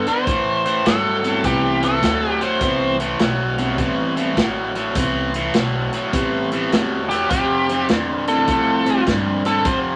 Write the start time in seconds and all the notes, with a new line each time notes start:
Already playing: A4
0.07 D3 B3 C5, muted upright bass stroke, closed hi-hat
0.27 A2 E3, kick, closed hi-hat
0.66 A2 E3 C5, closed hi-hat
0.85 G2 A2 F#3 A4, snare, closed hi-hat
1.23 A2 F#3 G3 B3 C4 E4, closed hi-hat
1.44 C2 A2 E3 G4, kick, closed hi-hat
1.83 A2 E3 A4, closed hi-hat
2.03 D2 A2 F#3, kick, snare, closed hi-hat
2.30 G4
2.41 A2 F#3 C5, closed hi-hat
2.60 C2 A2 E3 G3 B3 C4 E4, kick, closed hi-hat
3.00 A2 E3, closed hi-hat
3.19 B1 A2 F#3, snare, closed hi-hat
3.58 A2 F#3 G3 B3 C4 D4, closed hi-hat
3.78 G1 A2 E3, kick, closed hi-hat
4.16 A2 E3, closed hi-hat
4.37 A1 A2 F#3, kick, snare, closed hi-hat
4.75 A2 F#3, closed hi-hat
4.95 C2 A2 E3 G3 B3 C4 E4, kick, closed hi-hat
5.34 A2 E3, closed hi-hat
5.54 B1 A2 F#3, snare, closed hi-hat
5.93 A2 F#3, closed hi-hat
6.12 A1 A2 E3 G3 B3 C4 G4, kick, snare, closed hi-hat
6.52 A2 E3, closed hi-hat
6.72 E2 A2 F#3, snare, closed hi-hat
7.10 A2 F#3 G4, snare, closed hi-hat
7.30 F2 C3 G4, kick, closed hi-hat
7.69 F2 C3, closed hi-hat
7.89 E2 F2 D3, snare, closed hi-hat
8.27 F2 D3 G3 A3 C4 E4 A4, closed hi-hat
8.48 F2 A2 C3, kick, closed hi-hat
8.86 F2 C3, closed hi-hat
9.07 F2 G2 D3, kick, snare, closed hi-hat
9.45 F2 D3 A4, snare, closed hi-hat
9.65 F2 C3 C5, kick, closed hi-hat